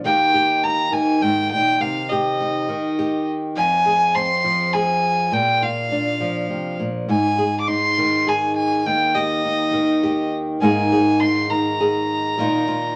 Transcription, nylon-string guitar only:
0.04 1.21 D#2 medium
0.04 0.91 D#3 medium
0.04 1.78 A#3 medium
0.04 0.63 D#4 medium
0.04 0.34 G4 medium
0.34 1.77 G4 medium
0.64 1.77 D#4 medium
0.92 2.68 D#3 medium
1.22 1.51 G#2 medium
1.52 1.80 A#2 medium
1.80 2.69 C3 medium
2.12 2.98 G4 medium
2.40 3.54 D#4 medium
2.69 3.57 D#3 medium
2.99 3.54 G4 medium
3.57 5.29 F2 medium
3.86 4.73 G#4 medium
4.15 5.29 C4 medium
4.44 5.29 F3 medium
4.75 5.30 G#4 medium
5.32 6.50 A#2 medium
5.62 7.06 F4 medium
5.92 7.06 D4 medium
6.20 7.05 F3 medium
6.50 6.79 C3 medium
6.79 7.09 A#2 medium
7.08 8.81 G#2 medium
7.38 8.26 G#4 medium
7.68 9.44 D#4 medium
7.98 9.72 D#3 medium
8.27 8.82 G#4 medium
8.86 10.61 D#2 medium
9.15 10.02 G4 medium
9.44 10.58 D#4 medium
9.73 10.61 D#3 medium
10.03 10.58 G4 medium
10.61 12.34 G#2 medium
10.61 11.49 D#3 medium
10.61 12.39 A#3 medium
10.61 11.20 D#4 medium
10.61 10.91 G#4 medium
10.92 11.79 G#4 medium
11.21 12.35 D#4 medium
11.50 12.37 D#3 medium
11.80 12.35 G#4 medium
12.38 12.95 A#2 medium
12.38 12.96 D#3 medium
12.38 12.94 A#3 medium
12.38 12.94 D#4 medium
12.38 12.66 F4 medium
12.67 12.93 F4 medium

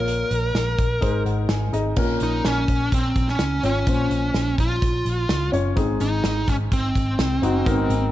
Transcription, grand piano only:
0.00 0.51 A#2 medium
0.00 0.62 F4 medium
0.00 0.62 A#4 medium
0.00 0.62 C#5 medium
1.01 1.69 G#2 medium
1.01 1.61 D#4 medium
1.01 1.61 G#4 medium
1.01 1.61 C5 medium
1.26 1.48 F#5 medium
1.50 1.94 G#5 medium
1.72 1.93 D#4 medium
1.72 1.93 G#4 medium
1.72 1.93 D#5 medium
1.97 2.65 A#2 medium
1.97 2.75 C#4 medium
1.97 2.76 F4 medium
1.97 2.76 A#4 medium
3.63 3.83 C#4 medium
3.63 3.83 F4 medium
3.63 3.84 C#5 medium
3.87 4.55 A#2 medium
3.87 4.65 C#4 medium
3.87 4.66 F4 medium
3.87 4.66 C5 medium
5.52 5.72 C#4 medium
5.52 5.73 F4 medium
5.52 5.73 C#5 loud
5.76 6.44 G#2 medium
5.76 6.55 C4 medium
5.76 6.55 D#4 medium
5.76 6.55 G#4 loud
7.42 7.62 C4 medium
7.42 7.62 D#4 medium
7.42 7.63 F#4 medium
7.66 8.12 G#2 medium
7.66 7.72 B3 medium
7.66 8.12 D#4 medium
7.66 8.12 A#4 medium
7.71 8.12 C4 medium

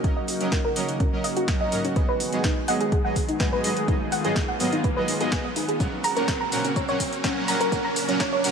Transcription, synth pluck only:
0.04 0.09 F#4 medium
0.17 0.25 D#5 medium
0.41 0.52 C#4 medium
0.52 0.57 A#4 medium
0.65 0.73 A#4 loud
1.00 1.09 C#4 medium
1.24 1.29 D#5 loud
1.37 1.41 F#4 loud
1.48 1.53 F#4 medium
1.61 1.69 D#5 medium
1.85 1.96 C#4 medium
1.96 2.01 B4 medium
2.09 2.17 B4 loud
2.44 2.53 D#4 medium
2.68 2.73 F#5 loud
2.81 2.85 G#4 loud
2.92 2.97 G#4 medium
3.05 3.13 F#5 medium
3.29 3.40 D#4 medium
3.40 3.45 B4 medium
3.53 3.61 B4 loud
3.88 3.97 D#4 medium
4.12 4.17 F#5 loud
4.25 4.29 G#4 loud
4.36 4.41 G#4 medium
4.49 4.57 F#5 medium
4.73 4.84 D#4 medium
4.84 4.89 B4 medium
4.97 5.05 B4 loud
5.21 5.29 G#4 loud
5.32 5.37 G#4 medium
5.45 5.53 D#5 medium
5.56 5.65 D#4 medium
5.69 5.80 G#4 medium
5.80 5.89 C#4 medium
6.04 6.09 A#5 loud
6.17 6.21 A#4 loud
6.28 6.33 A#4 medium
6.41 6.49 A#5 medium
6.65 6.76 C#4 medium
6.76 6.81 C#5 medium
6.89 6.97 C#5 loud
7.24 7.33 C#4 medium
7.48 7.53 A#5 loud
7.61 7.65 A#4 loud
7.72 7.77 A#4 medium
7.85 7.93 A#5 medium
8.09 8.20 C#4 medium
8.20 8.25 C#5 medium
8.33 8.41 C#5 loud

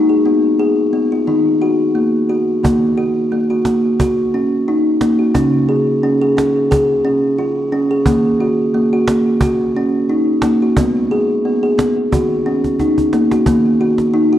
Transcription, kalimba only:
0.00 1.25 G#3 medium
0.00 0.10 D#4 medium
0.10 0.25 G#4 medium
0.26 0.60 B3 medium
0.59 0.93 G#4 medium
0.93 1.12 B3 medium
1.12 1.28 F4 medium
1.27 2.60 D#3 medium
1.27 1.61 D#4 medium
1.62 1.96 F#4 medium
1.95 2.29 A#3 medium
2.29 2.63 F#4 medium
2.63 5.31 D#3 medium
2.63 2.98 A#3 medium
2.97 3.31 F#4 medium
3.32 3.50 A#3 medium
3.50 3.65 F#4 medium
3.66 3.99 A#3 medium
4.01 4.34 F#4 medium
4.34 4.68 C#4 medium
4.68 5.01 D#4 medium
5.01 5.20 A#3 medium
5.19 5.35 F#4 medium
5.35 8.02 C#3 medium
5.35 5.69 C#4 medium
5.69 6.03 G#4 medium
6.03 6.21 C#4 medium
6.21 6.37 G#4 medium
6.37 6.71 C#4 medium
6.71 7.05 G#4 medium
7.05 7.38 C#4 medium
7.38 7.72 F4 medium
7.72 7.91 C#4 medium
7.91 8.06 G#4 medium
8.06 10.73 D#3 medium
8.06 8.40 A#3 medium
8.41 8.74 F#4 medium
8.74 8.93 A#3 medium
8.93 9.08 F#4 medium
9.08 9.42 A#3 medium
9.42 9.76 F#4 medium
9.76 10.10 C#4 medium
10.09 10.43 D#4 medium
10.43 10.62 A#3 medium
10.62 10.77 F#4 medium
10.77 12.09 G#3 medium
10.77 11.11 B3 medium
11.11 11.44 G#4 medium
11.45 11.63 B3 medium
11.63 11.78 G#4 medium
11.78 12.12 B3 medium
12.12 13.44 D#3 medium
12.12 12.45 F#4 medium
12.46 12.79 C#4 medium
12.80 13.13 D#4 medium
13.13 13.31 A#3 medium
13.32 13.47 F#4 medium
13.47 14.39 D#3 medium
13.47 13.80 A#3 medium
13.81 14.14 F#4 medium
14.14 14.32 D#4 medium
14.33 14.39 F#4 medium

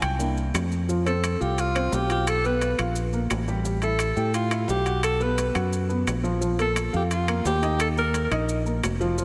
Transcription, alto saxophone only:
1.07 1.43 A4 medium
1.42 1.61 G4 medium
1.60 1.96 F4 medium
1.94 2.10 G4 medium
2.12 2.30 G4 medium
2.28 2.47 A4 loud
2.46 2.80 B4 medium
3.84 4.31 A4 medium
4.35 4.67 F4 medium
4.70 5.02 G4 medium
5.04 5.24 A4 loud
5.22 5.56 B4 medium
6.61 6.92 A4 medium
6.96 7.04 G4 medium
7.13 7.44 F4 medium
7.46 7.78 G4 loud
7.81 7.89 A4 medium
7.98 8.30 A#4 medium

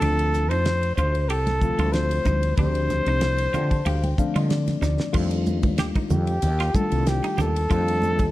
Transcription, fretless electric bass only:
0.02 0.52 D2 medium
0.52 0.91 F2 medium
0.97 1.29 D2 medium
1.29 1.71 C2 medium
1.79 2.18 D2 medium
2.26 2.53 D2 medium
2.58 2.99 D2 medium
3.06 3.46 C2 medium
3.54 3.81 D3 medium
3.86 4.13 D2 medium
4.35 4.75 D3 medium
4.82 4.97 D2 medium
5.14 5.64 F2 medium
5.64 5.91 D#2 medium
6.10 6.38 F2 medium
6.43 6.70 D#2 medium
6.92 7.19 C2 medium
7.39 7.66 D#2 medium
7.71 8.19 F2 loud
8.19 8.31 D#2 medium

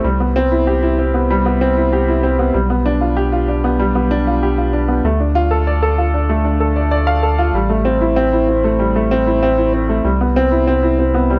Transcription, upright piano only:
0.04 0.19 G3 medium
0.20 0.35 B3 medium
0.36 0.51 C4 loud
0.52 0.66 E4 medium
0.67 0.82 G4 medium
0.82 0.98 E4 medium
0.99 1.07 C4 medium
1.14 1.29 B3 medium
1.30 1.45 G3 medium
1.46 1.60 B3 medium
1.61 1.76 C4 loud
1.77 1.92 E4 medium
1.93 2.07 G4 medium
2.08 2.23 E4 medium
2.23 2.32 C4 medium
2.39 2.54 B3 medium
2.54 2.69 G3 medium
2.70 2.85 B3 medium
2.86 3.01 D4 loud
3.01 3.16 F4 medium
3.17 3.32 G4 medium
3.32 3.47 F4 medium
3.48 3.57 D4 medium
3.64 3.79 B3 medium
3.79 3.94 G3 medium
3.95 4.10 B3 medium
4.11 4.26 D4 loud
4.27 4.42 F4 medium
4.43 4.57 G4 medium
4.58 4.73 F4 medium
4.73 4.82 D4 medium
4.88 5.04 B3 medium
5.05 5.20 A3 medium
5.20 5.35 D4 medium
5.35 5.50 F4 loud
5.51 5.66 A4 medium
5.67 5.82 D5 medium
5.82 5.98 A4 medium
5.98 6.07 F4 medium
6.14 6.29 D4 medium
6.29 6.44 A3 medium
6.45 6.60 D4 medium
6.60 6.75 A4 medium
6.76 6.90 D5 medium
6.91 7.01 D5 medium
7.07 7.22 F5 medium
7.23 7.38 A4 medium
7.39 7.54 F4 medium
7.55 7.70 G3 medium
7.70 7.85 A3 medium
7.85 8.00 C4 medium
8.01 8.16 E4 medium
8.16 8.26 C4 loud
8.33 8.48 E4 medium
8.49 8.57 C4 medium
8.64 8.79 A3 medium
8.79 8.94 G3 medium
8.96 9.10 A3 medium
9.11 9.26 C4 loud
9.27 9.42 E4 medium
9.43 9.51 C4 loud
9.58 9.73 E4 medium
9.74 9.83 C4 medium
9.89 10.04 A3 medium
10.05 10.19 G3 medium
10.21 10.35 B3 medium
10.36 10.51 C4 loud
10.52 10.67 E4 medium
10.67 10.76 C4 loud
10.83 10.98 E4 medium
10.99 11.08 C4 medium
11.14 11.29 B3 medium
11.30 11.39 G3 medium

